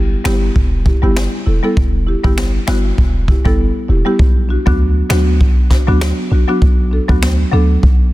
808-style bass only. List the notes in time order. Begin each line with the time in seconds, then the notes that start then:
Already playing: G1
0.25 G1
0.56 E1
1.03 G1
1.47 E1
1.77 E1
2.24 G1
2.68 G1
2.98 E1
3.45 G1
3.89 E1
4.19 B1
4.67 D2
5.10 D2
5.41 B1
5.88 D2
6.31 B1
6.62 B1
7.09 D2
7.53 D2
7.83 B1